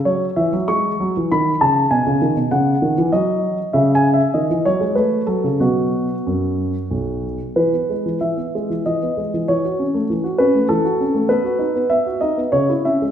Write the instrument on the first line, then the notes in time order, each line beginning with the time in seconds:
grand piano
0.05 F#3 C#5
0.36 E3 E5
0.53 F#3
0.68 G#3 C#6
1.00 F#3
1.17 E3
1.32 D#3 B5
1.61 C#3 A5
1.91 B2 G#5
2.07 C#3
2.22 D#3
2.36 B2
2.51 C#3 F#5
2.82 D#3
2.98 E3
3.12 F#3 D#5
3.73 C#3 E5
3.95 G#5
4.14 E5
4.34 D#3 D#5
4.50 E3
4.65 F#3 C#5
4.81 G#3
4.95 A3 B4
5.27 F#3 A4
5.44 C#3
5.60 B2 F#3 B3 F#4
6.26 F#2
6.91 B1
7.56 E3 B4
7.73 B3
7.90 G#3
8.06 E3
8.21 E3 E5
8.37 B3
8.55 G#3
8.70 E3
8.86 E3 D#5
9.03 B3
9.17 G#3
9.34 E3
9.48 E3 C#5
9.65 F#4
9.79 C#4
9.94 A3
10.10 E3
10.24 F#4
10.38 C#4 B4
10.55 A3
10.69 E3 A4
10.85 F#4
11.01 C#4
11.15 A3
11.29 B3 B4
11.44 F#4
11.59 D#4
11.76 B3
11.90 B3 E5
12.07 F#4
12.21 D#4 D#5
12.37 B3
12.52 C#3 C#5
12.69 E4
12.85 C#4 E5
13.02 G#3